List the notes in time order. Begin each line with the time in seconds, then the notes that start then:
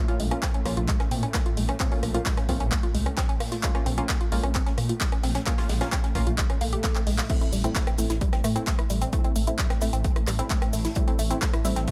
Already playing: A2 A3
0.08 A#3 C#4 F4, closed hi-hat
0.20 A#1 G#3, closed hi-hat, open hi-hat
0.31 A#3 C#4 F4, cross-stick, closed hi-hat
0.43 C4, kick, snare, clap, closed hi-hat
0.54 C#4, closed hi-hat
0.65 A#1 A#3 C#4 F4, cross-stick, closed hi-hat, open hi-hat
0.77 A#1 F4, closed hi-hat
0.88 G#3, kick, clap, closed hi-hat
1.00 C#4, cross-stick, snare, closed hi-hat
1.11 A#2 C4, closed hi-hat, open hi-hat
1.23 C#4, closed hi-hat
1.34 A#3, kick, cross-stick, snare, clap, closed hi-hat
1.46 F4, closed hi-hat
1.57 A#1 G#3, closed hi-hat, open hi-hat
1.69 C#4, cross-stick, closed hi-hat
1.80 A#3 C4 C#4 F4, kick, clap, closed hi-hat
1.92 A#3 C#4 F4, open hi-hat
2.03 A#1 A#3, cross-stick, closed hi-hat, open hi-hat
2.14 A#3 C#4 F4, closed hi-hat
2.26 G#3, kick, snare, clap, closed hi-hat
2.37 C#4, cross-stick, snare, closed hi-hat
2.49 A#1 A#3 C4 C#4 F4, kick, closed hi-hat, open hi-hat
2.60 A#1 C#4, closed hi-hat
2.72 A#3, kick, cross-stick, clap, closed hi-hat
2.83 F4, closed hi-hat
2.95 C2 G#3, closed hi-hat, open hi-hat
3.06 C#4, cross-stick, closed hi-hat
3.17 C4, kick, snare, clap, closed hi-hat
3.29 C#4, closed hi-hat
3.40 A#2 A#3, cross-stick, open hi-hat
3.52 F4, snare, closed hi-hat
3.63 G#3 A#3 C#4 F4, kick, clap, closed hi-hat
3.74 A#3 C#4 F4, cross-stick, closed hi-hat
3.86 A#1 C4, closed hi-hat, open hi-hat
3.98 A#3 C#4 F4, closed hi-hat
4.09 A#3, kick, cross-stick, snare, clap, closed hi-hat
4.21 F4, closed hi-hat
4.32 A#1 G#3 A#3 C#4 F4, open hi-hat
4.43 A#1 C#4, cross-stick, closed hi-hat
4.55 C4, kick, clap, closed hi-hat
4.66 C#4, snare, closed hi-hat
4.78 A#2 A#3, cross-stick, closed hi-hat, open hi-hat
4.89 F4, closed hi-hat
5.01 G#3, kick, snare, clap, closed hi-hat
5.12 C#4, cross-stick, closed hi-hat
5.23 A#1 C4, snare, closed hi-hat, open hi-hat
5.35 C#4, snare, closed hi-hat
5.46 A#3 C#4 F4, kick, cross-stick, snare, clap, closed hi-hat
5.58 A#3 C#4 F4, snare, closed hi-hat, open hi-hat
5.69 A#1 G#3, snare, closed hi-hat, open hi-hat
5.81 A#3 C#4 F4, cross-stick, snare, closed hi-hat
5.92 C4, kick, snare, clap, closed hi-hat
6.04 C#4, snare, closed hi-hat
6.15 A#1 A#3 C#4 F4, kick, cross-stick, closed hi-hat, open hi-hat
6.27 A#1 F4, closed hi-hat
6.38 G#3, kick, clap, closed hi-hat, swell
6.50 C#4, cross-stick, closed hi-hat
6.61 A#1 A#3, closed hi-hat, open hi-hat
6.73 G4, closed hi-hat
6.84 A#3, kick, cross-stick, snare, clap, closed hi-hat
6.95 C4, clap, closed hi-hat
7.07 A#1 G#3, open hi-hat
7.18 A#3, snare, clap, closed hi-hat
7.29 A2 A3 C4 E4, kick, closed hi-hat, crash, impact, shaker
7.41 A3 C4 E4, closed hi-hat, shaker
7.52 A1 G3, closed hi-hat, open hi-hat, shaker
7.64 A3 C4 E4, closed hi-hat, shaker
7.75 A3, kick, snare, clap, closed hi-hat, shaker
7.87 C4, cross-stick, closed hi-hat, shaker
7.97 A1 A3 C4 E4, closed hi-hat, open hi-hat, shaker
8.10 A1 E4, snare, closed hi-hat, shaker
8.21 G3, kick, closed hi-hat, shaker
8.32 C4, cross-stick, snare, closed hi-hat, shaker
8.44 A2 A3, cross-stick, closed hi-hat, open hi-hat, shaker
8.56 A3 C4 E4, closed hi-hat, shaker
8.67 A3, kick, snare, clap, closed hi-hat, shaker
8.79 E4, cross-stick, closed hi-hat, shaker
8.89 A1 G3, closed hi-hat, open hi-hat, shaker
9.01 C4, closed hi-hat, shaker
9.13 A3 C4 E4, kick, closed hi-hat, shaker
9.24 A3 C4 E4, closed hi-hat, shaker
9.36 A1 A3, closed hi-hat, open hi-hat, shaker
9.47 A3 C4 E4, closed hi-hat, shaker
9.59 G3, kick, snare, clap, closed hi-hat, shaker
9.70 C4, cross-stick, snare, closed hi-hat, shaker
9.81 A1 A3 C4 E4, closed hi-hat, open hi-hat, shaker
9.93 A1 C4, closed hi-hat, shaker
10.04 A3, kick, closed hi-hat, shaker
10.16 E4, cross-stick, closed hi-hat, shaker
10.27 A1 G3, cross-stick, clap, closed hi-hat, open hi-hat, shaker
10.39 A3 C4 E4, closed hi-hat, shaker
10.50 A3, kick, snare, clap, closed hi-hat, shaker
10.62 C4, cross-stick, closed hi-hat, shaker
10.73 A1 A3, open hi-hat, shaker
10.85 E4, snare, closed hi-hat, shaker
10.95 G3 A3 C4 E4, kick, closed hi-hat, shaker
11.08 A3 C4 E4, closed hi-hat, shaker
11.19 A1 A3, closed hi-hat, open hi-hat, shaker
11.31 A3 C4 E4, closed hi-hat, shaker
11.41 A3, kick, snare, clap, closed hi-hat, shaker
11.53 E4, cross-stick, closed hi-hat, shaker
11.65 A1 G3 A3 C4 E4, closed hi-hat, open hi-hat, shaker
11.76 A1 C4, snare, closed hi-hat, shaker
11.88 A3, kick, closed hi-hat, shaker